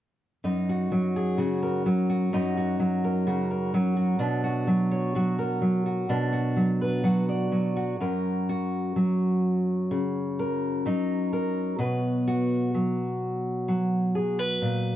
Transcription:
0, 0, Header, 1, 2, 480
1, 0, Start_track
1, 0, Key_signature, 6, "major"
1, 0, Tempo, 944882
1, 220, Time_signature, 4, 2, 24, 8
1, 3096, Tempo, 956938
1, 5016, Tempo, 941915
1, 7583, End_track
2, 0, Start_track
2, 0, Title_t, "Steel-string acoustic guitar"
2, 0, Program_c, 0, 25
2, 224, Note_on_c, 0, 42, 46
2, 226, Note_on_c, 0, 63, 43
2, 352, Note_on_c, 0, 66, 37
2, 466, Note_on_c, 0, 54, 39
2, 590, Note_on_c, 0, 68, 42
2, 699, Note_on_c, 0, 49, 42
2, 702, Note_off_c, 0, 66, 0
2, 704, Note_on_c, 0, 66, 42
2, 823, Note_off_c, 0, 68, 0
2, 825, Note_on_c, 0, 70, 40
2, 942, Note_off_c, 0, 54, 0
2, 943, Note_off_c, 0, 49, 0
2, 944, Note_on_c, 0, 54, 43
2, 1062, Note_off_c, 0, 66, 0
2, 1064, Note_on_c, 0, 66, 41
2, 1177, Note_off_c, 0, 42, 0
2, 1182, Note_off_c, 0, 63, 0
2, 1183, Note_on_c, 0, 42, 57
2, 1188, Note_on_c, 0, 63, 51
2, 1304, Note_off_c, 0, 66, 0
2, 1307, Note_on_c, 0, 66, 38
2, 1418, Note_off_c, 0, 54, 0
2, 1420, Note_on_c, 0, 54, 47
2, 1539, Note_off_c, 0, 70, 0
2, 1545, Note_on_c, 0, 70, 41
2, 1659, Note_off_c, 0, 66, 0
2, 1659, Note_on_c, 0, 49, 46
2, 1661, Note_on_c, 0, 66, 46
2, 1775, Note_off_c, 0, 70, 0
2, 1781, Note_on_c, 0, 70, 38
2, 1897, Note_off_c, 0, 49, 0
2, 1898, Note_off_c, 0, 54, 0
2, 1900, Note_on_c, 0, 54, 52
2, 2013, Note_off_c, 0, 66, 0
2, 2015, Note_on_c, 0, 66, 47
2, 2108, Note_off_c, 0, 63, 0
2, 2108, Note_off_c, 0, 70, 0
2, 2126, Note_off_c, 0, 42, 0
2, 2128, Note_on_c, 0, 47, 56
2, 2131, Note_on_c, 0, 62, 46
2, 2253, Note_off_c, 0, 66, 0
2, 2255, Note_on_c, 0, 66, 43
2, 2367, Note_off_c, 0, 54, 0
2, 2374, Note_on_c, 0, 54, 49
2, 2496, Note_on_c, 0, 73, 42
2, 2609, Note_off_c, 0, 54, 0
2, 2614, Note_off_c, 0, 66, 0
2, 2615, Note_on_c, 0, 54, 45
2, 2620, Note_on_c, 0, 66, 47
2, 2734, Note_off_c, 0, 73, 0
2, 2736, Note_on_c, 0, 70, 44
2, 2845, Note_off_c, 0, 54, 0
2, 2851, Note_on_c, 0, 54, 46
2, 2969, Note_off_c, 0, 66, 0
2, 2975, Note_on_c, 0, 66, 46
2, 3087, Note_off_c, 0, 47, 0
2, 3090, Note_off_c, 0, 62, 0
2, 3093, Note_on_c, 0, 47, 62
2, 3096, Note_on_c, 0, 62, 56
2, 3205, Note_off_c, 0, 66, 0
2, 3211, Note_on_c, 0, 66, 47
2, 3325, Note_off_c, 0, 54, 0
2, 3331, Note_on_c, 0, 54, 50
2, 3452, Note_off_c, 0, 70, 0
2, 3456, Note_on_c, 0, 71, 49
2, 3561, Note_off_c, 0, 54, 0
2, 3567, Note_off_c, 0, 66, 0
2, 3567, Note_on_c, 0, 54, 51
2, 3573, Note_on_c, 0, 66, 45
2, 3691, Note_off_c, 0, 71, 0
2, 3693, Note_on_c, 0, 74, 44
2, 3804, Note_off_c, 0, 54, 0
2, 3810, Note_on_c, 0, 54, 53
2, 3928, Note_off_c, 0, 66, 0
2, 3934, Note_on_c, 0, 66, 51
2, 4027, Note_off_c, 0, 66, 0
2, 4028, Note_off_c, 0, 47, 0
2, 4028, Note_off_c, 0, 74, 0
2, 4030, Note_off_c, 0, 62, 0
2, 4054, Note_on_c, 0, 42, 52
2, 4058, Note_on_c, 0, 70, 51
2, 4299, Note_on_c, 0, 66, 44
2, 4528, Note_off_c, 0, 54, 0
2, 4534, Note_on_c, 0, 54, 50
2, 5009, Note_on_c, 0, 49, 53
2, 5250, Note_off_c, 0, 70, 0
2, 5256, Note_on_c, 0, 70, 49
2, 5490, Note_off_c, 0, 54, 0
2, 5491, Note_off_c, 0, 49, 0
2, 5492, Note_on_c, 0, 54, 50
2, 5497, Note_on_c, 0, 63, 44
2, 5727, Note_off_c, 0, 70, 0
2, 5733, Note_on_c, 0, 70, 47
2, 5945, Note_off_c, 0, 70, 0
2, 5947, Note_off_c, 0, 63, 0
2, 5964, Note_off_c, 0, 42, 0
2, 5966, Note_on_c, 0, 47, 58
2, 5972, Note_on_c, 0, 71, 57
2, 6071, Note_off_c, 0, 66, 0
2, 6216, Note_on_c, 0, 66, 45
2, 6451, Note_off_c, 0, 54, 0
2, 6454, Note_on_c, 0, 54, 52
2, 6932, Note_off_c, 0, 54, 0
2, 6932, Note_on_c, 0, 54, 53
2, 7169, Note_off_c, 0, 71, 0
2, 7171, Note_on_c, 0, 68, 45
2, 7292, Note_off_c, 0, 68, 0
2, 7292, Note_on_c, 0, 71, 38
2, 7406, Note_off_c, 0, 47, 0
2, 7408, Note_on_c, 0, 46, 50
2, 7583, Note_off_c, 0, 46, 0
2, 7583, Note_off_c, 0, 54, 0
2, 7583, Note_off_c, 0, 66, 0
2, 7583, Note_off_c, 0, 71, 0
2, 7583, End_track
0, 0, End_of_file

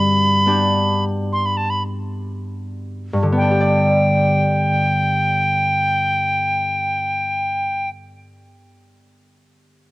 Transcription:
0, 0, Header, 1, 3, 480
1, 0, Start_track
1, 0, Key_signature, 1, "major"
1, 0, Tempo, 1252610
1, 180, Tempo, 1360544
1, 660, Tempo, 1558442
1, 1135, Time_signature, 3, 2, 24, 8
1, 2100, Tempo, 1583113
1, 3133, End_track
2, 0, Start_track
2, 0, Title_t, "Tin whistle"
2, 0, Program_c, 0, 75
2, 0, Note_on_c, 0, 83, 60
2, 383, Note_off_c, 0, 83, 0
2, 482, Note_on_c, 0, 84, 47
2, 528, Note_on_c, 0, 83, 46
2, 533, Note_off_c, 0, 84, 0
2, 569, Note_on_c, 0, 81, 45
2, 574, Note_off_c, 0, 83, 0
2, 615, Note_on_c, 0, 83, 44
2, 620, Note_off_c, 0, 81, 0
2, 660, Note_off_c, 0, 83, 0
2, 1136, Note_on_c, 0, 79, 54
2, 2521, Note_off_c, 0, 79, 0
2, 3133, End_track
3, 0, Start_track
3, 0, Title_t, "Harp"
3, 0, Program_c, 1, 46
3, 0, Note_on_c, 1, 43, 46
3, 0, Note_on_c, 1, 60, 35
3, 0, Note_on_c, 1, 62, 32
3, 177, Note_on_c, 1, 59, 35
3, 179, Note_off_c, 1, 62, 0
3, 180, Note_on_c, 1, 62, 33
3, 182, Note_on_c, 1, 67, 36
3, 198, Note_off_c, 1, 60, 0
3, 1057, Note_off_c, 1, 43, 0
3, 1061, Note_on_c, 1, 43, 37
3, 1090, Note_on_c, 1, 50, 31
3, 1119, Note_off_c, 1, 59, 0
3, 1120, Note_on_c, 1, 59, 33
3, 1122, Note_off_c, 1, 62, 0
3, 1123, Note_off_c, 1, 67, 0
3, 1149, Note_on_c, 1, 62, 29
3, 1177, Note_on_c, 1, 67, 31
3, 1207, Note_on_c, 1, 74, 38
3, 2448, Note_off_c, 1, 43, 0
3, 2476, Note_off_c, 1, 50, 0
3, 2506, Note_off_c, 1, 59, 0
3, 2534, Note_off_c, 1, 62, 0
3, 2562, Note_off_c, 1, 67, 0
3, 2591, Note_off_c, 1, 74, 0
3, 3133, End_track
0, 0, End_of_file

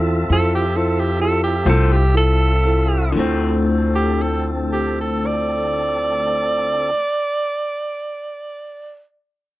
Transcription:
0, 0, Header, 1, 6, 480
1, 0, Start_track
1, 0, Key_signature, -1, "minor"
1, 0, Tempo, 884956
1, 651, Tempo, 944882
1, 1131, Tempo, 1011804
1, 1611, Time_signature, 12, 3, 24, 8
1, 1611, Tempo, 1047120
1, 4560, End_track
2, 0, Start_track
2, 0, Title_t, "Tenor saxophone"
2, 0, Program_c, 0, 66
2, 176, Note_on_c, 0, 69, 99
2, 282, Note_off_c, 0, 69, 0
2, 298, Note_on_c, 0, 67, 87
2, 415, Note_on_c, 0, 69, 79
2, 423, Note_off_c, 0, 67, 0
2, 539, Note_on_c, 0, 67, 78
2, 547, Note_off_c, 0, 69, 0
2, 649, Note_off_c, 0, 67, 0
2, 657, Note_on_c, 0, 69, 100
2, 764, Note_off_c, 0, 69, 0
2, 770, Note_on_c, 0, 67, 84
2, 880, Note_off_c, 0, 67, 0
2, 902, Note_on_c, 0, 69, 89
2, 1015, Note_on_c, 0, 67, 89
2, 1023, Note_off_c, 0, 69, 0
2, 1126, Note_off_c, 0, 67, 0
2, 1143, Note_on_c, 0, 69, 104
2, 1602, Note_off_c, 0, 69, 0
2, 1977, Note_on_c, 0, 67, 74
2, 2097, Note_on_c, 0, 69, 66
2, 2104, Note_off_c, 0, 67, 0
2, 2206, Note_off_c, 0, 69, 0
2, 2330, Note_on_c, 0, 67, 73
2, 2442, Note_off_c, 0, 67, 0
2, 2460, Note_on_c, 0, 69, 64
2, 2578, Note_on_c, 0, 74, 78
2, 2585, Note_off_c, 0, 69, 0
2, 4302, Note_off_c, 0, 74, 0
2, 4560, End_track
3, 0, Start_track
3, 0, Title_t, "Tonewheel organ"
3, 0, Program_c, 1, 16
3, 0, Note_on_c, 1, 60, 64
3, 0, Note_on_c, 1, 65, 64
3, 0, Note_on_c, 1, 69, 65
3, 0, Note_on_c, 1, 76, 67
3, 1592, Note_off_c, 1, 60, 0
3, 1594, Note_off_c, 1, 65, 0
3, 1595, Note_off_c, 1, 69, 0
3, 1595, Note_off_c, 1, 76, 0
3, 1604, Note_on_c, 1, 69, 53
3, 1606, Note_on_c, 1, 60, 56
3, 3330, Note_off_c, 1, 69, 0
3, 3332, Note_off_c, 1, 60, 0
3, 4560, End_track
4, 0, Start_track
4, 0, Title_t, "Tine electric piano"
4, 0, Program_c, 2, 4
4, 0, Note_on_c, 2, 64, 62
4, 0, Note_on_c, 2, 65, 52
4, 0, Note_on_c, 2, 69, 64
4, 110, Note_off_c, 2, 64, 0
4, 110, Note_off_c, 2, 65, 0
4, 113, Note_off_c, 2, 69, 0
4, 164, Note_on_c, 2, 64, 56
4, 171, Note_on_c, 2, 65, 54
4, 175, Note_on_c, 2, 72, 61
4, 344, Note_off_c, 2, 64, 0
4, 347, Note_off_c, 2, 65, 0
4, 350, Note_off_c, 2, 72, 0
4, 414, Note_on_c, 2, 64, 53
4, 418, Note_on_c, 2, 65, 48
4, 421, Note_on_c, 2, 72, 61
4, 593, Note_off_c, 2, 64, 0
4, 596, Note_off_c, 2, 65, 0
4, 597, Note_off_c, 2, 72, 0
4, 647, Note_on_c, 2, 64, 57
4, 651, Note_on_c, 2, 65, 55
4, 658, Note_on_c, 2, 67, 60
4, 826, Note_off_c, 2, 64, 0
4, 828, Note_off_c, 2, 65, 0
4, 831, Note_off_c, 2, 67, 0
4, 888, Note_on_c, 2, 64, 51
4, 888, Note_on_c, 2, 65, 48
4, 894, Note_on_c, 2, 72, 56
4, 1070, Note_off_c, 2, 64, 0
4, 1070, Note_off_c, 2, 65, 0
4, 1073, Note_off_c, 2, 72, 0
4, 1128, Note_on_c, 2, 64, 53
4, 1132, Note_on_c, 2, 65, 49
4, 1135, Note_on_c, 2, 69, 58
4, 1306, Note_off_c, 2, 64, 0
4, 1307, Note_off_c, 2, 65, 0
4, 1309, Note_off_c, 2, 69, 0
4, 1373, Note_on_c, 2, 64, 51
4, 1374, Note_on_c, 2, 65, 49
4, 1380, Note_on_c, 2, 69, 60
4, 1552, Note_off_c, 2, 64, 0
4, 1553, Note_off_c, 2, 65, 0
4, 1555, Note_off_c, 2, 69, 0
4, 1597, Note_on_c, 2, 64, 52
4, 1612, Note_on_c, 2, 65, 50
4, 1631, Note_on_c, 2, 72, 55
4, 3322, Note_off_c, 2, 64, 0
4, 3336, Note_off_c, 2, 65, 0
4, 3355, Note_off_c, 2, 72, 0
4, 4560, End_track
5, 0, Start_track
5, 0, Title_t, "Clean electric guitar"
5, 0, Program_c, 3, 27
5, 886, Note_on_c, 3, 65, 66
5, 887, Note_on_c, 3, 57, 60
5, 888, Note_on_c, 3, 60, 62
5, 892, Note_on_c, 3, 50, 52
5, 1032, Note_off_c, 3, 65, 0
5, 1033, Note_off_c, 3, 57, 0
5, 1033, Note_off_c, 3, 60, 0
5, 1035, Note_off_c, 3, 50, 0
5, 1597, Note_on_c, 3, 50, 66
5, 1616, Note_on_c, 3, 57, 64
5, 1628, Note_on_c, 3, 60, 65
5, 3340, Note_off_c, 3, 50, 0
5, 3359, Note_off_c, 3, 57, 0
5, 3371, Note_off_c, 3, 60, 0
5, 4560, End_track
6, 0, Start_track
6, 0, Title_t, "Upright bass"
6, 0, Program_c, 4, 32
6, 0, Note_on_c, 4, 40, 91
6, 146, Note_off_c, 4, 40, 0
6, 161, Note_on_c, 4, 41, 77
6, 864, Note_off_c, 4, 41, 0
6, 882, Note_on_c, 4, 36, 88
6, 1589, Note_off_c, 4, 36, 0
6, 1611, Note_on_c, 4, 38, 76
6, 3335, Note_off_c, 4, 38, 0
6, 4560, End_track
0, 0, End_of_file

